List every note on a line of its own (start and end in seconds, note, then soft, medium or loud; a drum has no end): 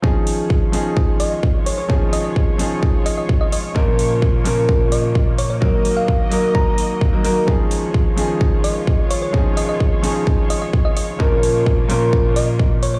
0.02 3.72 D#3 medium
0.02 0.70 F3 medium
0.02 3.72 G#3 medium
0.02 0.70 C#4 medium
0.02 0.71 D#4 medium
0.02 5.58 F4 medium
0.02 0.71 G#4 medium
0.02 5.58 C#5 medium
0.02 kick loud
0.27 open hi-hat loud
0.50 kick loud
0.72 1.86 F3 medium
0.72 1.87 C#4 medium
0.72 1.87 D#4 medium
0.72 1.87 G#4 loud
0.72 open hi-hat loud
0.97 kick loud
1.20 1.33 D#5 medium
1.20 open hi-hat loud
1.43 kick loud
1.66 1.74 C#5 medium
1.66 open hi-hat loud
1.78 1.85 C#5 medium
1.88 2.56 F3 medium
1.88 2.56 C#4 medium
1.88 2.57 D#4 medium
1.88 2.57 G#4 medium
1.88 kick loud
2.13 2.20 D#5 medium
2.13 open hi-hat loud
2.24 2.32 D#5 medium
2.36 kick loud
2.58 3.72 F3 medium
2.58 3.73 C#4 medium
2.58 3.73 D#4 medium
2.58 3.74 G#4 medium
2.58 open hi-hat loud
2.83 kick loud
3.06 3.13 D#5 medium
3.06 open hi-hat loud
3.18 3.25 D#5 medium
3.29 kick loud
3.41 3.48 D#5 medium
3.52 3.60 D#5 medium
3.52 open hi-hat loud
3.75 4.42 A#2 medium
3.75 5.60 C#3 medium
3.75 4.42 F3 medium
3.75 7.44 A#3 medium
3.75 4.43 A#3 medium
3.75 4.43 C#4 medium
3.75 4.43 A#4 medium
3.75 kick loud
3.99 open hi-hat loud
4.22 kick loud
4.44 5.58 A#2 medium
4.44 5.59 F3 medium
4.44 5.59 A#3 medium
4.44 5.59 C#4 medium
4.44 5.60 A#4 loud
4.44 open hi-hat loud
4.69 kick loud
4.92 5.05 D#5 medium
4.92 open hi-hat loud
5.15 kick loud
5.38 5.46 C#5 medium
5.38 open hi-hat loud
5.50 5.58 C#5 medium
5.61 11.16 D#3 medium
5.61 6.28 F#3 medium
5.61 6.29 A#3 medium
5.61 6.29 D#4 medium
5.61 7.46 F#4 medium
5.61 6.29 A#4 medium
5.61 7.46 D#5 medium
5.61 kick loud
5.85 open hi-hat loud
5.97 6.09 F5 medium
6.08 kick loud
6.30 7.10 F#3 medium
6.30 7.10 A#3 medium
6.30 7.11 D#4 medium
6.30 7.11 A#4 loud
6.30 open hi-hat loud
6.55 6.90 A#5 medium
6.55 kick loud
6.78 open hi-hat loud
7.01 kick loud
7.12 7.21 F#3 medium
7.12 7.22 A#3 medium
7.12 7.22 D#4 medium
7.12 7.22 A#4 medium
7.24 7.31 F#3 medium
7.24 7.31 A#3 medium
7.24 7.31 D#4 medium
7.24 7.31 A#4 loud
7.24 open hi-hat loud
7.47 8.14 F3 medium
7.47 11.16 G#3 medium
7.47 8.15 C#4 medium
7.47 8.15 D#4 medium
7.47 11.16 F4 medium
7.47 8.15 G#4 medium
7.47 12.99 C#5 medium
7.47 kick loud
7.71 open hi-hat loud
7.94 kick loud
8.16 9.30 F3 medium
8.16 9.31 C#4 medium
8.16 9.31 D#4 medium
8.16 9.32 G#4 loud
8.16 open hi-hat medium
8.41 kick loud
8.64 8.77 D#5 medium
8.64 open hi-hat loud
8.87 kick loud
9.11 9.18 C#5 medium
9.11 open hi-hat loud
9.22 9.30 C#5 medium
9.33 10.00 F3 medium
9.33 10.01 C#4 medium
9.33 10.01 D#4 medium
9.33 10.01 G#4 medium
9.33 kick loud
9.57 9.65 D#5 medium
9.57 open hi-hat loud
9.69 9.76 D#5 medium
9.80 kick loud
10.02 11.17 F3 medium
10.02 11.17 C#4 medium
10.02 11.17 D#4 medium
10.02 11.18 G#4 loud
10.02 open hi-hat loud
10.27 kick loud
10.50 10.58 D#5 medium
10.50 open hi-hat loud
10.62 10.69 D#5 medium
10.73 kick loud
10.85 10.92 D#5 medium
10.97 11.04 D#5 medium
10.97 open hi-hat loud
11.19 11.86 A#2 medium
11.19 12.99 C#3 medium
11.19 11.87 F3 medium
11.19 12.99 A#3 medium
11.19 11.87 A#3 medium
11.19 11.87 C#4 medium
11.19 12.99 F4 medium
11.19 11.88 A#4 loud
11.19 kick loud
11.43 open hi-hat medium
11.66 kick loud
11.89 12.99 A#2 medium
11.89 12.99 F3 medium
11.89 12.99 A#3 medium
11.89 12.99 C#4 medium
11.89 12.99 A#4 loud
11.89 open hi-hat loud
12.13 kick loud
12.36 12.49 D#5 medium
12.36 open hi-hat loud
12.59 kick loud
12.83 12.90 C#5 medium
12.83 open hi-hat loud
12.94 12.99 C#5 medium